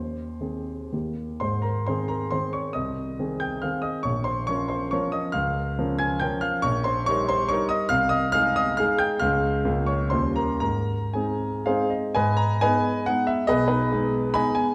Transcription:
0.00 0.39 D#2 soft
0.00 0.91 C5 medium
0.41 0.88 D#3 soft
0.41 0.89 C4 soft
0.41 0.89 G#4 soft
0.92 1.40 D#2 soft
0.92 1.37 D#3 soft
0.92 1.38 A#3 soft
0.92 1.38 G4 soft
1.40 1.86 G#2 medium
1.40 1.62 C5 medium
1.40 1.64 C6 medium
1.62 1.86 A#4 medium
1.62 1.86 A#5 medium
1.86 2.29 D#3 soft
1.86 2.29 C4 soft
1.86 2.29 G#4 soft
1.86 2.09 C5 medium
1.86 2.10 C6 medium
2.08 2.30 A#4 medium
2.08 2.31 A#5 medium
2.31 2.71 D#3 soft
2.31 2.72 C4 soft
2.31 2.72 G#4 soft
2.31 2.52 C5 medium
2.31 2.53 C6 medium
2.53 2.74 C#5 medium
2.53 2.75 C#6 medium
2.73 3.18 C2 medium
2.73 3.38 D#5 medium
2.73 3.41 D#6 medium
3.19 3.60 D#3 soft
3.19 3.60 C4 soft
3.19 3.60 G#4 soft
3.40 3.62 G5 medium
3.40 3.63 G6 medium
3.62 4.01 D#3 soft
3.62 4.01 C4 soft
3.62 4.01 G#4 medium
3.62 3.83 F5 medium
3.62 3.84 F6 medium
3.82 4.03 D#5 medium
3.82 4.04 D#6 medium
4.03 4.47 A#1 medium
4.03 4.24 C#5 medium
4.03 4.25 C#6 medium
4.24 4.46 C5 medium
4.24 4.47 C6 medium
4.47 4.89 F3 soft
4.47 4.89 C#4 soft
4.47 4.90 A#4 medium
4.47 4.69 C#5 medium
4.47 4.70 C#6 medium
4.68 4.91 C5 medium
4.68 4.92 C6 medium
4.91 5.32 F3 medium
4.91 5.32 C#4 medium
4.91 5.32 A#4 medium
4.91 5.13 C#5 medium
4.91 5.14 C#6 medium
5.12 5.34 D#5 medium
5.12 5.35 D#6 medium
5.32 5.77 C#2 medium
5.32 5.96 F5 medium
5.32 5.99 F6 loud
5.79 6.18 F3 medium
5.79 6.18 C#4 medium
5.79 6.19 A#4 medium
5.99 6.20 G#5 medium
5.99 6.21 G#6 loud
6.20 6.61 F3 medium
6.20 6.61 C#4 medium
6.20 6.61 A#4 medium
6.20 6.42 G5 medium
6.20 6.42 G6 medium
6.41 6.63 F5 medium
6.41 6.63 F6 loud
6.62 7.06 A#1 medium
6.62 6.84 C#5 medium
6.62 6.85 C#6 loud
6.84 7.06 C5 medium
6.84 7.07 C6 loud
7.06 7.47 G3 medium
7.06 7.47 D#4 medium
7.06 7.47 A#4 medium
7.06 7.28 C#5 medium
7.06 7.29 C#6 loud
7.29 7.49 C5 medium
7.29 7.50 C6 loud
7.49 7.87 G3 medium
7.49 7.87 D#4 medium
7.49 7.87 A#4 medium
7.49 7.69 C#5 medium
7.49 7.70 C#6 loud
7.69 7.89 D#5 medium
7.69 7.90 D#6 loud
7.89 8.33 C2 medium
7.89 8.10 F5 loud
7.89 8.11 F6 loud
8.09 8.32 D#5 medium
8.09 8.34 D#6 loud
8.32 8.75 G#3 medium
8.32 8.76 D#4 medium
8.32 8.76 G#4 medium
8.32 8.56 F5 medium
8.32 8.56 F6 loud
8.56 8.78 D#5 medium
8.56 8.79 D#6 loud
8.77 9.17 G#3 medium
8.77 9.17 D#4 medium
8.77 9.18 G#4 medium
8.77 8.99 F5 medium
8.77 9.00 F6 loud
8.98 9.19 G5 medium
8.98 9.20 G6 loud
9.20 9.63 C#2 medium
9.20 9.62 G#3 medium
9.20 9.62 C#4 medium
9.20 9.62 G#4 medium
9.20 9.85 F5 medium
9.20 9.89 F6 loud
9.65 10.12 C#2 medium
9.65 10.10 A#3 medium
9.65 10.10 C#4 medium
9.65 10.10 F4 medium
9.86 10.11 C#5 medium
9.86 10.12 C#6 medium
10.10 10.61 D#2 medium
10.10 10.59 G3 soft
10.10 10.59 C#4 soft
10.10 10.59 F4 soft
10.10 10.35 C5 medium
10.10 10.36 C6 medium
10.36 10.60 A#4 medium
10.36 10.59 A#5 medium
10.60 11.14 G#2 medium
10.60 11.11 A#4 medium
10.60 11.14 A#5 medium
11.13 11.63 G#3 soft
11.13 11.63 C4 soft
11.13 11.64 D#4 medium
11.13 11.65 G#4 soft
11.13 11.91 G#5 medium
11.66 12.12 G#3 soft
11.66 12.12 C4 medium
11.66 12.12 D#4 medium
11.66 11.90 G#4 medium
11.66 11.90 C5 medium
11.66 11.91 F5 medium
11.90 12.14 D#5 medium
12.15 12.61 G#2 medium
12.15 12.37 B4 medium
12.15 12.37 D#5 medium
12.15 12.38 G#5 loud
12.37 12.62 A#5 loud
12.61 13.04 G#3 medium
12.61 13.05 B3 medium
12.61 13.05 D#4 medium
12.61 13.05 B4 medium
12.61 13.05 D#5 medium
12.61 13.07 G#5 loud
13.06 13.46 G#3 medium
13.06 13.46 B3 medium
13.06 13.46 D#4 medium
13.06 13.28 F#5 loud
13.27 13.49 E5 medium
13.47 13.91 B1 medium
13.47 13.67 G#4 medium
13.47 13.66 B4 medium
13.47 13.69 D#5 loud
13.68 13.91 D#4 medium
13.68 14.11 G#4 medium
13.68 14.13 B4 medium
13.92 14.32 G#3 medium
13.92 14.32 B3 medium
13.92 14.32 D#4 medium
14.34 14.74 G#3 medium
14.34 14.74 B3 medium
14.34 14.75 D#4 medium
14.34 14.55 D#5 medium
14.34 14.53 G#5 medium
14.34 14.56 B5 loud
14.55 14.75 G#5 medium

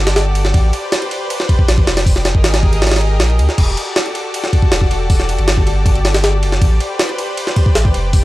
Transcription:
0.00 0.52 G1 loud
0.00 0.51 F#4 medium
0.00 2.02 G4 medium
0.00 0.51 A4 medium
0.00 2.02 D5 medium
0.07 snare loud
0.07 ride medium
0.16 snare loud
0.16 ride medium
0.35 ride medium
0.45 snare medium
0.54 0.71 A1 loud
0.54 2.04 B4 medium
0.54 2.04 C5 medium
0.54 kick loud
0.54 ride medium
0.73 ride medium
0.92 snare loud
0.92 ride medium
1.02 ride soft
1.11 ride medium
1.30 ride medium
1.40 snare medium
1.49 kick medium
1.49 ride medium
1.59 kick medium
1.68 1.85 A1 medium
1.68 snare loud
1.68 ride medium
1.78 kick loud
1.87 2.33 F1 medium
1.87 snare loud
1.87 ride medium
1.97 snare loud
1.97 ride medium
2.06 3.56 G4 medium
2.06 3.56 G#4 medium
2.06 3.56 A#4 medium
2.06 3.56 D#5 medium
2.06 kick loud
2.06 open hi-hat medium
2.16 snare soft
2.25 snare loud
2.25 ride medium
2.35 3.22 G#1 loud
2.35 kick medium
2.44 snare loud
2.44 ride medium
2.54 snare loud
2.54 ride medium
2.63 kick medium
2.73 ride medium
2.82 snare medium
2.82 ride medium
2.87 snare medium
2.87 ride medium
2.92 snare medium
2.92 ride medium
2.96 snare medium
2.96 ride medium
3.01 ride medium
3.20 3.41 A#1 loud
3.20 snare loud
3.20 ride medium
3.30 ride soft
3.39 3.48 D2 loud
3.39 ride medium
3.49 snare soft
3.58 3.75 E1 loud
3.58 6.58 F#4 medium
3.58 8.24 G4 medium
3.58 6.58 A4 medium
3.58 8.09 D5 medium
3.58 kick loud
3.58 crash medium
3.58 ride medium
3.77 ride medium
3.96 snare loud
3.96 ride medium
4.06 ride soft
4.15 ride medium
4.34 ride medium
4.44 snare medium
4.53 kick loud
4.53 ride medium
4.62 kick loud
4.72 4.89 E1 medium
4.72 snare loud
4.72 ride medium
4.81 kick loud
4.91 5.37 E1 medium
4.91 ride medium
5.10 kick loud
5.10 open hi-hat medium
5.20 snare soft
5.29 ride medium
5.38 6.44 G1 loud
5.38 ride soft
5.48 snare loud
5.48 ride medium
5.57 kick loud
5.67 ride medium
5.86 kick loud
5.86 ride medium
5.95 ride soft
6.05 snare loud
6.05 ride medium
6.14 snare loud
6.14 ride medium
6.24 snare loud
6.24 ride medium
6.43 6.60 F#1 medium
6.43 ride medium
6.52 snare medium
6.61 6.79 A1 medium
6.61 8.12 B4 medium
6.61 8.12 C5 medium
6.61 kick loud
6.61 ride medium
6.80 ride medium
6.99 snare loud
6.99 ride medium
7.09 ride soft
7.18 ride medium
7.37 ride medium
7.47 snare medium
7.56 kick medium
7.56 ride medium
7.66 kick loud
7.75 7.93 A1 medium
7.75 snare loud
7.75 ride medium
7.85 kick medium
7.94 8.24 F1 medium
7.94 ride medium
8.13 8.24 G#4 medium
8.13 8.24 A#4 medium
8.13 8.24 D#5 medium
8.13 kick loud
8.13 open hi-hat medium

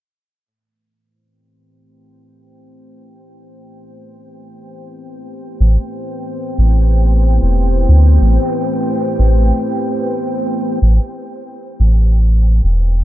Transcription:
0.39 13.04 A3 medium
0.47 13.04 B4 medium
0.57 13.04 E4 medium
1.01 13.04 C5 medium
1.23 13.04 G5 medium
5.60 5.77 A1 medium
6.58 7.39 A1 medium
7.43 7.86 E1 medium
7.89 8.18 D2 loud
8.21 8.38 A1 medium
9.19 9.52 A1 medium
10.82 10.99 A1 medium
11.80 12.61 A1 medium
12.64 13.04 E1 medium

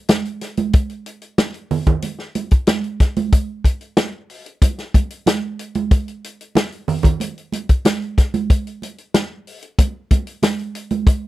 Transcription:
0.09 snare loud
0.09 closed hi-hat loud
0.09 high conga medium
0.25 closed hi-hat soft
0.41 snare soft
0.41 closed hi-hat medium
0.57 closed hi-hat medium
0.57 high conga medium
0.73 kick loud
0.73 closed hi-hat medium
0.90 closed hi-hat soft
1.06 closed hi-hat medium
1.22 closed hi-hat soft
1.38 snare loud
1.38 closed hi-hat medium
1.38 high conga medium
1.54 closed hi-hat soft
1.71 open hi-hat medium
1.71 low conga medium
1.87 kick medium
1.87 closed hi-hat medium
1.87 low conga loud
2.02 closed hi-hat medium
2.02 muted conga soft
2.19 snare soft
2.35 closed hi-hat medium
2.35 muted conga medium
2.51 kick medium
2.51 closed hi-hat medium
2.67 snare loud
2.67 closed hi-hat loud
2.67 high conga medium
2.84 closed hi-hat soft
3.00 kick medium
3.00 snare soft
3.00 closed hi-hat medium
3.16 closed hi-hat medium
3.16 high conga medium
3.33 kick loud
3.33 closed hi-hat medium
3.64 kick medium
3.64 closed hi-hat medium
3.81 closed hi-hat soft
3.97 snare loud
3.97 closed hi-hat medium
3.97 high conga medium
4.30 open hi-hat medium
4.46 closed hi-hat medium
4.62 kick loud
4.62 closed hi-hat loud
4.62 muted conga medium
4.78 snare soft
4.78 closed hi-hat soft
4.94 kick loud
4.94 closed hi-hat medium
4.94 muted conga medium
5.10 closed hi-hat medium
5.26 snare loud
5.26 closed hi-hat loud
5.26 high conga medium
5.59 closed hi-hat medium
5.75 closed hi-hat medium
5.75 high conga medium
5.91 kick loud
5.91 closed hi-hat medium
6.08 closed hi-hat soft
6.24 closed hi-hat medium
6.41 closed hi-hat soft
6.55 snare loud
6.55 closed hi-hat loud
6.55 high conga medium
6.72 closed hi-hat soft
6.88 open hi-hat medium
6.88 low conga medium
7.03 kick medium
7.03 closed hi-hat medium
7.03 low conga loud
7.20 closed hi-hat loud
7.20 muted conga soft
7.38 closed hi-hat soft
7.52 closed hi-hat medium
7.52 muted conga medium
7.69 kick medium
7.69 closed hi-hat medium
7.85 snare loud
7.85 closed hi-hat loud
7.85 high conga medium
8.02 closed hi-hat soft
8.18 kick medium
8.18 snare soft
8.18 closed hi-hat medium
8.34 closed hi-hat medium
8.34 high conga medium
8.50 kick loud
8.50 closed hi-hat medium
8.67 closed hi-hat soft
8.82 closed hi-hat medium
8.82 muted conga soft
8.98 closed hi-hat soft
9.14 snare loud
9.14 closed hi-hat loud
9.14 high conga medium
9.47 open hi-hat medium
9.62 closed hi-hat medium
9.79 kick loud
9.79 closed hi-hat loud
9.79 muted conga medium
10.11 kick medium
10.11 closed hi-hat medium
10.11 muted conga medium
10.27 closed hi-hat medium
10.43 snare loud
10.43 closed hi-hat loud
10.43 high conga medium
10.59 closed hi-hat soft
10.75 closed hi-hat medium
10.90 closed hi-hat medium
10.90 high conga medium
11.07 kick loud
11.07 closed hi-hat medium

